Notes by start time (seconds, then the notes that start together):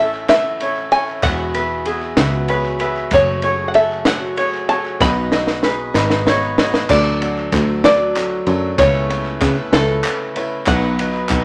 Already playing: A1 A2 A3 D#5
0.00 C#4 E4 A4 E5
0.14 clap
0.29 A2 E3 A3 C#4 E4 A4 E5, snare, clap, ride
0.60 A3 C#4 E4 A4 C#5 E5, ride
0.77 clap
0.91 A3 C#4 E4 A4 C#5 G#5, ride
1.08 clap
1.22 E1 E2 E3 F#3 B3 F#4 G#4 E5 F#5, kick, clap, ride
1.54 B3 F#4 G#4 B4 E5, ride
1.85 F#3 B3 F#4 G#4 E5, ride
2.03 clap
2.17 C#2 E3 F#3 B3 F#4 G#4 E5, snare, clap, ride
2.48 F#3 B3 F#4 G#4 B4 C#5, ride
2.66 clap
2.79 B3 F#4 G#4 B4 E5, ride
2.97 clap
3.11 F#1 F#2 F#3 A3 C#4 F#4 G#4 C#5, kick, clap, ride
3.42 A3 C#4 F#4 G#4 C#5, ride
3.68 F#5
3.74 A3 C#4 F#4 G#4 A4 C#5 E5, ride
3.92 clap
4.05 F#3 A3 C#4 F#4 G#4 C#5 F#5, snare, clap, ride
4.36 A3 C#4 F#4 G#4 C#5, ride
4.54 clap
4.69 A3 C#4 F#4 G#4 C#5 A5, ride
4.86 clap
5.00 B1 B2 D#3 F#3 B3 D#4 F#4 B4 D#5 B5, kick, snare, clap
5.32 F#3 B3 D#4 F#4 B4 D#5, snare
5.47 snare
5.63 F#3 B3 D#4 F#4 G#4 B4, snare
5.94 G#1 B2 D#3 F#3 B3 D#4 F#4 B4 D#5, snare, clap
6.10 snare
6.25 F#3 B3 D#4 F#4 C#5 D#5 F#5, snare
6.30 B4
6.43 clap
6.58 F#3 B3 D#4 F#4 B4 C#5 D#5, snare, clap
6.74 snare
6.89 D2 D3 F#3 A3 D4 F#4 A4 D5, kick, clap, crash
7.07 clap
7.21 F#3 A3 D4 A4 D5, clap, ride
7.38 clap
7.52 D2 F#3 A3 D4 F#4 A4 D5, kick, clap, ride
7.83 D3 F#3 A3 D4 F#4 A4 D5, snare, ride
8.15 F#3 A3 D4 A4 C#5, clap, ride
8.47 F#2 F#3 A3 D4 F#4 A4 C#5, ride
8.78 C#2 C#3 A3 B3 C#4 E4 A4 B4 C#5, kick, clap, ride
8.95 clap
9.09 A3 C#4 E4 B4 C#5, clap, ride
9.26 clap
9.41 C#3 A3 B3 C#4 E4 A4 B4 C#5, kick, clap, ride
9.72 C#2 C#3 A3 B3 C#4 E4 A4 B4 C#5, snare, ride
9.89 clap
10.04 A3 C#4 E4 B4 C#5, clap, ride
10.35 A3 B3 C#4 E4 A4 B4 C#5, ride
10.67 B1 B2 D#3 F#3 B3 D#4 B4 D#5 F#5, kick, clap, ride
10.83 clap
10.99 F#3 B3 D#4 B4 D#5, clap, ride
11.14 clap
11.29 B1 F#3 B3 D#4 B4 D#5, kick, clap, ride